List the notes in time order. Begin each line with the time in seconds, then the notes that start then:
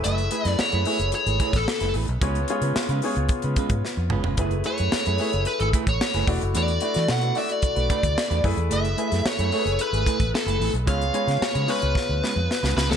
Already playing: A3 E4 G#4 B4
0.04 F#1 A3 E4 G#4 B4 E5, closed hi-hat
0.18 closed hi-hat
0.31 A3 E4 G#4 B4, closed hi-hat
0.45 F#2 A3 E4 G#4 B4 D5, snare, closed hi-hat
0.59 C#5, muted fingered electric bass stroke, snare
0.72 F#2 A3 E4 G#4 B4, closed hi-hat
0.85 A3 E4 G#4 B4 C#5, open hi-hat
0.99 F#1, muted clean electric guitar stroke, closed hi-hat
1.12 C#5, muted clean electric guitar stroke, closed hi-hat
1.26 G#1 A3 E4 G#4 B4, closed hi-hat
1.39 A3 E4 G#4 B4, kick, closed hi-hat
1.53 A1 A4, muted clean electric guitar stroke, kick, snare, closed hi-hat
1.67 muted clean electric guitar stroke, snare
1.80 F#1 A3 E4 G#4 B4, snare, closed hi-hat
1.94 A1 A3 E4 G#4 B4, open hi-hat
2.08 B1, muted clean electric guitar stroke, closed hi-hat
2.21 C#2 G#3 B3 C#4 F4 G#4 B4 C#5, kick, closed hi-hat
2.35 closed hi-hat
2.48 G#3 B3 C#4 F4 G#4 B4 C#5, closed hi-hat
2.61 C#3 G#3 C#4 F4 B4, closed hi-hat
2.76 muted fingered electric bass stroke, snare
2.89 C#3 G#3 C#4 F4 B4, closed hi-hat
3.02 G#3 B3 C#4 F4 G#4 C#5, open hi-hat
3.16 C#2, muted clean electric guitar stroke, closed hi-hat
3.29 muted fingered electric bass stroke, muted clean electric guitar stroke, kick, closed hi-hat
3.42 C#3 G#3 C#4 F4 B4, closed hi-hat
3.56 G#3 C#4 F4 B4, kick, closed hi-hat
3.70 G#2, muted clean electric guitar stroke, kick, closed hi-hat
3.85 muted clean electric guitar stroke, snare
3.97 F2, muted clean electric guitar stroke
4.10 F#1 G#3 C#4 F4 B4, mid tom
4.24 F1 G#3 C#4 F4 B4, floor tom
4.37 F#1 A3 E4 G#4 B4, kick, closed hi-hat
4.51 closed hi-hat
4.64 A3 E4 G#4 B4 C#5, closed hi-hat
4.78 F#2 A3 E4 G#4 B4, closed hi-hat
4.92 muted fingered electric bass stroke, muted clean electric guitar stroke, snare
5.06 F#2 A3 E4 G#4 B4, closed hi-hat
5.18 A3 E4 G#4 B4 C#5, open hi-hat
5.33 F#1, muted clean electric guitar stroke, closed hi-hat
5.45 B4, muted clean electric guitar stroke, closed hi-hat
5.60 G#1 A3 E4 G#4 A4 B4, closed hi-hat
5.73 A3 E4 G#4 B4, kick, closed hi-hat
5.87 A1 C#5, muted clean electric guitar stroke, kick, closed hi-hat
6.01 muted clean electric guitar stroke, snare
6.14 F#1 A3 E4 G#4 B4, snare, closed hi-hat
6.27 E1 A3 D4 E4 F#4 B4 D5, kick, open hi-hat
6.41 F#1, muted clean electric guitar stroke, closed hi-hat
6.53 E2 A3 D4 F#4 B4 D5, closed hi-hat
6.68 closed hi-hat
6.80 A3 D4 E4 F#4 B4 D5, closed hi-hat
6.94 E3 A3 D4 F#4 B4, snare, closed hi-hat
7.08 B2 F#5, snare
7.21 A3 D4 F#4 B4, closed hi-hat
7.35 A3 D4 E4 F#4 C#5 D5 E5, open hi-hat
7.49 D5, muted clean electric guitar stroke, closed hi-hat
7.62 muted clean electric guitar stroke, kick, closed hi-hat
7.76 B1 A3 D4 F#4 B4, closed hi-hat
7.90 A3 D4 F#4 B4, kick, closed hi-hat
8.03 D2, muted clean electric guitar stroke, kick, closed hi-hat
8.16 muted clean electric guitar stroke, snare
8.30 E2 A3 D4 F#4 B4, closed hi-hat
8.44 F#2 A3 E4 G#4 B4, kick, open hi-hat
8.57 E2, muted clean electric guitar stroke, closed hi-hat
8.70 F#1 A3 E4 G#4 B4 E5, closed hi-hat
8.85 closed hi-hat
8.97 A3 E4 G#4 B4, closed hi-hat
9.11 F#2 A3 E4 G#4 B4, snare, closed hi-hat
9.25 C#5, muted fingered electric bass stroke, muted clean electric guitar stroke, snare
9.39 F#2 A3 E4 G#4 B4, closed hi-hat
9.52 A3 E4 G#4 A4 C#5, open hi-hat
9.59 B4
9.65 F#1, muted clean electric guitar stroke, closed hi-hat
9.79 B4, muted clean electric guitar stroke, closed hi-hat
9.93 G#1 A3 E4 G#4 B4, closed hi-hat
10.06 A3 E4 G#4 B4, kick, closed hi-hat
10.19 A1, muted clean electric guitar stroke, kick, closed hi-hat
10.34 A4, muted clean electric guitar stroke, snare
10.46 F#1 A3 E4 G#4 B4, closed hi-hat
10.60 A1 A3 E4 G#4 B4, open hi-hat
10.74 B1, muted clean electric guitar stroke, closed hi-hat
10.86 C#2 G#3 B3 C#4 F4 G#4 B4 C#5 F5, kick, closed hi-hat
11.01 closed hi-hat
11.13 G#3 B3 C#4 F4 G#4 B4 C#5, closed hi-hat
11.27 C#3 G#3 C#4 F4 B4, snare, closed hi-hat
11.40 C#5, muted clean electric guitar stroke, muted fingered electric bass stroke, snare
11.54 C#3 G#3 C#4 F4 B4, closed hi-hat
11.67 G#3 B3 C#4 F4 G#4 B4 C#5, open hi-hat
11.82 C#2, muted clean electric guitar stroke, closed hi-hat
11.95 muted clean electric guitar stroke, kick, snare
12.09 D2, muted clean electric guitar stroke
12.23 G#3 C#4 F4 B4, snare
12.36 F2, muted clean electric guitar stroke
12.50 muted clean electric guitar stroke, snare
12.63 C#2 G#3 C#4 F4 B4, snare
12.76 C#2 G#3 C#4 F4 B4, snare
12.90 D2 A4, muted clean electric guitar stroke, snare